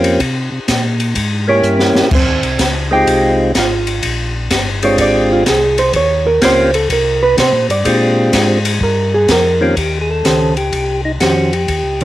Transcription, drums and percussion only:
0.04 ride medium
0.20 kick soft
0.20 ride medium
0.68 kick soft
0.68 snare medium
0.68 hi-hat pedal medium
0.68 ride medium
1.00 ride medium
1.15 kick soft
1.15 ride medium
1.63 hi-hat pedal medium
1.79 snare medium
1.95 snare medium
2.11 kick medium
2.11 crash medium
2.43 ride soft
2.59 kick soft
2.59 snare medium
2.59 hi-hat pedal medium
2.59 ride medium
3.07 kick soft
3.07 ride medium
3.55 kick soft
3.55 snare medium
3.55 hi-hat pedal medium
3.55 ride medium
3.87 ride medium
4.03 kick soft
4.03 ride medium
4.51 kick soft
4.51 snare medium
4.51 hi-hat pedal medium
4.51 ride medium
4.82 ride medium
4.98 kick soft
4.98 ride medium
5.46 kick soft
5.46 snare medium
5.46 hi-hat pedal medium
5.46 ride medium
5.78 ride medium
5.93 kick soft
5.93 ride medium
6.42 kick soft
6.42 snare medium
6.42 hi-hat pedal medium
6.42 ride medium
6.74 ride medium
6.90 kick soft
6.90 ride medium
7.38 kick soft
7.38 snare medium
7.38 hi-hat pedal medium
7.38 ride medium
7.70 ride medium
7.85 kick soft
7.85 ride medium
8.33 kick soft
8.33 snare medium
8.33 hi-hat pedal medium
8.33 ride medium
8.65 ride medium
8.81 kick soft
9.28 kick soft
9.28 snare medium
9.28 hi-hat pedal medium
9.28 ride medium
9.77 kick soft
9.77 ride medium
10.25 kick soft
10.25 snare medium
10.25 hi-hat pedal medium
10.25 ride medium
10.57 ride soft
10.73 kick soft
10.73 ride medium
11.20 kick soft
11.20 snare medium
11.20 hi-hat pedal medium
11.20 ride medium
11.53 ride soft
11.68 kick soft
11.68 ride medium
12.01 ride soft

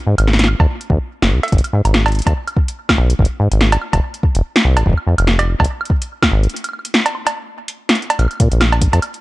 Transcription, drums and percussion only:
0.18 closed hi-hat medium
0.18 high woodblock medium
0.28 snare medium
0.33 snare medium
0.39 snare medium
0.39 closed hi-hat medium
0.44 snare loud
0.48 high woodblock soft
0.60 kick loud
0.60 cowbell medium
0.81 closed hi-hat soft
0.90 kick loud
1.22 snare loud
1.43 closed hi-hat soft
1.43 cowbell medium
1.48 closed hi-hat soft
1.52 kick loud
1.52 closed hi-hat soft
1.58 closed hi-hat medium
1.64 closed hi-hat medium
1.64 high woodblock soft
1.85 closed hi-hat medium
1.85 high woodblock medium
1.94 snare loud
2.06 closed hi-hat soft
2.06 cowbell medium
2.08 closed hi-hat soft
2.12 closed hi-hat soft
2.15 closed hi-hat soft
2.19 closed hi-hat soft
2.22 closed hi-hat soft
2.27 kick loud
2.27 closed hi-hat medium
2.27 cowbell medium
2.48 closed hi-hat soft
2.48 high woodblock medium
2.57 kick loud
2.68 closed hi-hat medium
2.89 kick medium
2.89 snare loud
2.89 high woodblock medium
3.10 closed hi-hat medium
3.19 kick loud
3.25 closed hi-hat medium
3.52 closed hi-hat medium
3.61 snare loud
3.72 closed hi-hat soft
3.72 cowbell medium
3.82 high woodblock soft
3.93 kick loud
3.93 closed hi-hat medium
3.93 cowbell medium
4.14 closed hi-hat soft
4.23 kick loud
4.35 closed hi-hat medium
4.56 snare loud
4.77 closed hi-hat medium
4.77 cowbell loud
4.86 kick loud
4.90 kick medium
4.93 kick medium
4.97 high woodblock soft
5.18 closed hi-hat medium
5.18 high woodblock medium
5.27 snare loud
5.39 closed hi-hat medium
5.39 cowbell medium
5.60 kick loud
5.60 cowbell medium
5.64 closed hi-hat medium
5.81 high woodblock medium
5.85 closed hi-hat soft
5.90 kick loud
6.02 closed hi-hat medium
6.22 kick medium
6.22 snare loud
6.22 high woodblock medium
6.43 closed hi-hat soft
6.49 closed hi-hat soft
6.56 closed hi-hat medium
6.64 closed hi-hat medium
6.64 high woodblock soft
6.69 high woodblock soft
6.73 high woodblock soft
6.79 high woodblock soft
6.85 closed hi-hat medium
6.94 snare loud
7.06 closed hi-hat medium
7.06 cowbell medium
7.15 high woodblock soft
7.27 closed hi-hat medium
7.27 cowbell medium
7.68 closed hi-hat medium
7.89 snare loud
7.89 closed hi-hat soft
7.95 closed hi-hat soft
8.02 closed hi-hat soft
8.10 closed hi-hat medium
8.10 cowbell loud
8.19 closed hi-hat medium
8.19 high woodblock medium
8.22 high woodblock soft
8.25 high woodblock soft
8.28 closed hi-hat soft
8.28 high woodblock soft
8.31 high woodblock soft
8.33 high woodblock soft
8.35 high woodblock soft
8.38 kick loud
8.38 closed hi-hat medium
8.38 high woodblock soft
8.52 closed hi-hat medium
8.61 snare loud
8.61 closed hi-hat medium
8.61 high woodblock medium
8.72 closed hi-hat soft
8.72 cowbell medium
8.82 kick loud
8.82 closed hi-hat loud
8.93 closed hi-hat medium
8.93 cowbell medium
9.02 closed hi-hat medium
9.02 high woodblock medium
9.14 closed hi-hat soft

